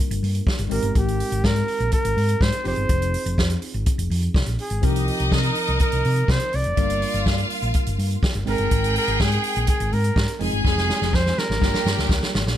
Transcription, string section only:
4.83 D#4 D#5
6.77 F4 F5
8.48 G#4 G5
10.40 G#4 G#5
11.61 G4 G5

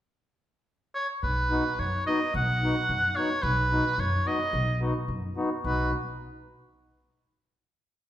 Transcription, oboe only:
0.95 C#5
1.24 B4
1.80 C#5
2.07 D#5
2.36 F#5
3.16 C#5
3.43 B4
4.00 C#5
4.28 D#5
5.66 B4

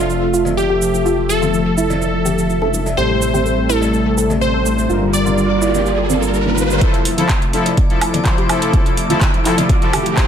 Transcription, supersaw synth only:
Already playing: F3 A4 E5
2.97 A2 G3 C4 A4
4.89 G2 G3 F4 A#4
6.81 F3 E4 A4
7.18 F3 E4 A4
7.53 F3 E4 A4
7.90 F3 E4 A4
8.25 F3 E4 C5
8.49 F3 E4 A4
8.73 F3 E4 A4
9.10 F3 E4 A4
9.45 F3 E4 A4
9.82 F3 E4 A4
10.17 F3 E4 C5

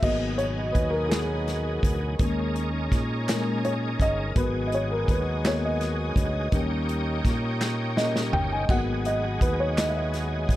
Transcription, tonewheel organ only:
0.02 B2 F#3 D#4 G#4
2.20 G#3 C#4 D#4 G#4
2.27 A#4
4.36 G#3 D#4 F#4 G#4
6.52 A#3 D#4 G4 C#5
8.69 G#3 D#4 F#4 G#4

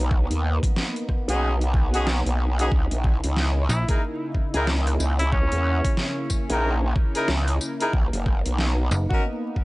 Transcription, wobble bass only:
Already playing: B1
0.30 D#2
1.28 B1
2.26 B1
2.72 C#2
2.91 A#1
3.24 C#2
4.54 C#2
5.00 C#2
5.52 E2
6.50 A#1
7.29 C#2
7.93 B1
8.13 F#1
8.46 B1

